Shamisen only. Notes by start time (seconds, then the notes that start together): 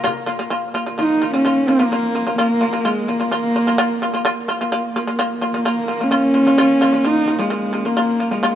0.04 A#3 F4
0.26 A#3 F4
0.39 A#3 F4
0.50 A#3 F4
0.74 A#3 F4
0.86 A#3 F4
0.98 A#3 F4
1.22 A#3 F4
1.34 A#3 F4
1.45 A#3 F4
1.68 A#3 F4
1.79 A#3 F4
1.92 A#3 F4
2.15 A#3 F4
2.27 A#3 F4
2.38 A#3 F4
2.61 A#3 F4
2.73 A#3 F4
2.85 A#3 F4
3.08 A#3 F4
3.20 A#3 F4
3.31 A#3 F4
3.56 A#3 F4
3.67 A#3 F4
3.78 A#3 F4
4.02 A#3 F4
4.14 A#3 F4
4.25 A#3 F4
4.48 A#3 F4
4.61 A#3 F4
4.72 A#3 F4
4.96 A#3 F4
5.07 A#3 F4
5.19 A#3 F4
5.41 A#3 F4
5.54 A#3 F4
5.65 A#3 F4
5.88 A#3 F4
6.00 A#3 F4
6.11 A#3 F4
6.34 A#3 F4
6.47 A#3 F4
6.58 A#3 F4
6.81 A#3 F4
6.93 A#3 F4
7.05 A#3 F4
7.28 A#3 F4
7.39 A#3 F4
7.50 A#3 F4
7.73 A#3 F4
7.85 A#3 F4
7.97 A#3 F4
8.20 A#3 F4
8.31 A#3 F4
8.43 A#3 F4